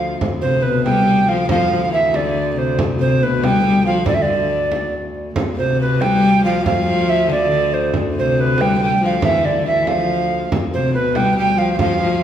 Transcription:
Already playing: D2 F3 F5
0.21 D2, frame drum
0.41 C3 C5, frame drum
0.61 B2 C3 B4
0.85 G3 G5, frame drum
1.06 G3
1.28 F3 F5
1.49 F3 F5, frame drum
1.71 F3, frame drum
1.86 F3
1.91 E3 E5
2.06 E3
2.13 D3 D5, frame drum
2.56 C3 C5
2.79 frame drum
2.99 C3 C5, frame drum
3.20 B2 B4
3.42 G3 G5, frame drum
3.65 G3
3.86 F3 F5
4.06 D3 D5, frame drum
4.14 E5
4.21 D3 D5
4.72 frame drum
4.93 frame drum
5.14 frame drum
5.36 D2, frame drum
5.57 C3 C5, frame drum
5.81 B4
6.01 G3 G5, frame drum
6.44 F3 F5
6.64 F3 F5, frame drum
6.87 frame drum
7.09 E5
7.29 D3 D5, frame drum
7.51 D3
7.74 C5
7.94 frame drum
8.15 C3, frame drum
8.19 C5
8.40 B4
8.58 G3 G5, frame drum
8.79 G3
8.83 G5
9.02 F3 F5
9.22 E3 E5, frame drum
9.45 D3 D5
9.65 E3 E5, frame drum
9.87 F3 F5, frame drum
10.31 frame drum
10.50 D2, frame drum
10.74 C3 C5, frame drum
10.94 B2 B4
11.15 G3 G5, frame drum
11.37 G3 G5
11.57 F3 F5
11.79 F3 F5, frame drum
12.01 F3, frame drum

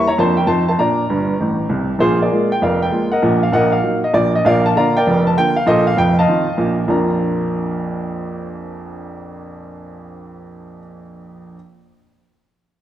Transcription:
0.07 C#5 A#5
0.18 F2 F3 A#3 D4 C5 A5
0.37 A#4 G5
0.47 F2 F3 C4 D#4 C5 A5
0.68 C5 A5
0.78 A#2 D4 D5 A#5
1.10 G1 G2
1.40 A1 A2
1.69 C2 C3
1.99 A#1 A#2 F4 G#4 C5
2.22 G#4 A#4 D5
2.32 G#3 A#3 F4
2.52 G5
2.62 F1 F2 A#4 D5 F5
2.82 G5
2.91 G#3 A#3 F4
3.12 A#4 D#5 F#5
3.22 A#1 A#2
3.43 F5
3.52 A#1 A#2 A#4 D#5 F#5
3.72 F5
3.83 F#3 A#3 D#4
4.04 D#5
4.14 A#1 A#2 D5
4.35 D#5
4.45 A#1 A#2 A#4 D5 F5
4.66 A5
4.76 D3 A#3 F4 D5 F5 A#5
4.97 A#4 D5 G5
5.07 F1 F2
5.27 A5
5.37 D3 A#3 F4 G5
5.56 F5
5.66 A#1 A#2 A4 C5 D#5
5.87 F5
5.97 F1 F2 G5
6.19 D#5 F5 A5
6.28 D#3 C4 F4
6.58 A#1 A#2
6.88 A#1 F2 F3 A#3 D4 F4 A#5

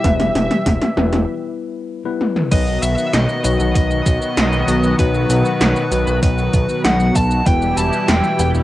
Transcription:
Already playing: B2 E3 G3 G4 E5
0.04 E1 G3 B3 E4 B4 E5, kick, closed hi-hat, mid tom
0.20 closed hi-hat, mid tom
0.35 E1, closed hi-hat, mid tom
0.51 closed hi-hat, mid tom
0.66 E1, kick, closed hi-hat, mid tom
0.82 closed hi-hat, mid tom
0.97 E1 G3 B3 E4 B4, mid tom
1.12 E1, closed hi-hat, mid tom
2.05 G3 B3 E4 B4
2.21 high tom
2.36 mid tom
2.52 B1 B2 D#3 F#3 B3 F#4 B4 D#5, kick, closed hi-hat, crash, shaker
2.67 shaker
2.83 B1 E5, closed hi-hat, shaker
2.98 shaker
3.13 B1 D#5, snare, closed hi-hat, shaker
3.29 shaker
3.44 B1 F#3 B3 D#4 B4 D#5, closed hi-hat, shaker
3.60 B1, shaker
3.75 B1 D#5, kick, closed hi-hat, shaker
3.91 shaker
4.06 B1, kick, closed hi-hat, shaker
4.22 shaker
4.37 B1, snare, closed hi-hat, shaker
4.53 shaker
4.68 B1, closed hi-hat, shaker
4.84 shaker
4.99 B1 F#3 B3 D#4 B4, kick, closed hi-hat, shaker
5.14 shaker
5.30 B1, closed hi-hat, shaker
5.45 shaker
5.61 B1, snare, closed hi-hat, shaker
5.76 shaker
5.92 B1 F#3 B3 D#4 B4, closed hi-hat, shaker
6.07 B1, shaker
6.23 B1 B4, kick, closed hi-hat, shaker
6.38 shaker
6.53 B1, kick, closed hi-hat, shaker
6.69 shaker
6.84 B1 F#5, snare, closed hi-hat, shaker
7.00 shaker
7.15 B1 A5, kick, closed hi-hat, shaker
7.31 shaker
7.46 E1 E3 G3 B3 E4 G4 B4 G5, kick, closed hi-hat, shaker
7.62 shaker
7.77 E1 A5, closed hi-hat, shaker
7.93 shaker
8.08 E1 G5, snare, closed hi-hat, shaker
8.24 shaker
8.39 E1 G3 B3 E4 B4 G5, closed hi-hat, shaker
8.55 E1, shaker

